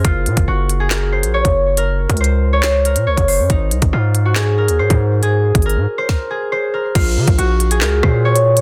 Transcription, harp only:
\new Staff \with { instrumentName = "Harp" } { \time 4/4 \key bes \minor \tempo 4 = 139 f'4 ges'8. aes'16 bes'8 c''8 des''4 | bes'4 c''8. des''16 r8 bes'8 des''8 c''8 | ees'4 f'8. ges'16 aes'8 bes'8 c''4 | aes'4 bes'8. c''16 bes'8 aes'8 c''8 bes'8 |
f'4 ges'8. aes'16 bes'8 c''8 des''4 | }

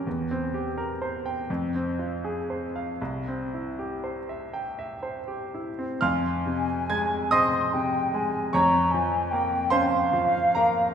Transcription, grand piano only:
\new Staff \with { instrumentName = "Grand piano" } { \time 6/8 \key f \minor \tempo 4. = 44 << { r2. | r2. | <f'' c''' f'''>4 <aes'' aes'''>8 <ees'' c''' ees'''>4. | <des'' bes'' des'''>4. <c'' c'''>4 <bes' bes''>8 | } \\ { e,16 c'16 g'16 bes'16 c''16 g''16 f,16 c'16 f'16 aes'16 c''16 f''16 | c,16 c'16 e'16 g'16 c''16 e''16 g''16 e''16 c''16 g'16 e'16 c'16 | f,8 c8 aes8 c'8 c8 aes8 | f,8 f8 bes8 des'8 f8 bes8 | } >> }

